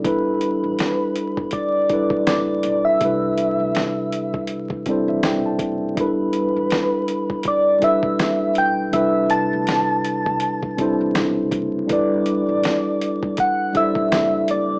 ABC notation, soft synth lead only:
X:1
M:4/4
L:1/16
Q:"Swing 16ths" 1/4=81
K:Clyd
V:1 name="Soft synth lead"
B8 d4 d3 e- | e12- e2 z2 | B8 d2 e4 g2 | e2 a12 z2 |
d8 f2 e4 d2 |]